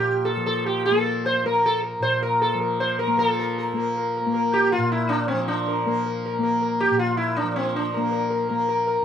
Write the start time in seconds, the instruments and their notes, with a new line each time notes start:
Already playing: tanpura A#2 F3 A#3, sitar G4
0.25 sitar A4
0.37 tanpura F3
0.46 sitar A4
0.66 sitar G4
0.85 sitar A4
0.91 tanpura A#3
1.26 sitar C5
1.44 tanpura A#3, sitar A#4
1.66 sitar A4
1.83 sitar A#4
2.00 tanpura A#2, sitar C5
2.23 sitar A#4
2.42 sitar A4
2.55 tanpura F3
2.61 sitar A#4
2.80 sitar C5
2.99 sitar A#4
3.07 tanpura A#3
3.18 tanpura F3, sitar A4 A#4
3.39 sitar A#4
3.58 sitar A#4
3.73 tanpura A#3, sitar A#4
3.97 sitar A#4
4.17 sitar A#4
4.26 tanpura A#3
4.34 sitar A#4
4.54 sitar G4
4.72 sitar F4
4.78 tanpura A#2
4.92 sitar E4
5.09 sitar D4
5.28 sitar C4
5.33 tanpura F3
5.48 sitar D4
5.68 sitar A#4
5.86 tanpura A#3, sitar A#4
6.06 sitar A#4
6.26 sitar A#4
6.39 tanpura A#3
6.43 sitar A#4
6.62 sitar A#4
6.80 sitar G4
6.91 tanpura A#2
6.99 sitar F4
7.17 sitar E4
7.37 sitar D4
7.44 tanpura F3
7.56 sitar C4
7.76 sitar D4
7.94 tanpura A#3, sitar A#4
8.12 sitar A#4
8.30 sitar A#4
8.49 tanpura A#3, sitar A#4
8.69 sitar A#4
8.87 sitar A#4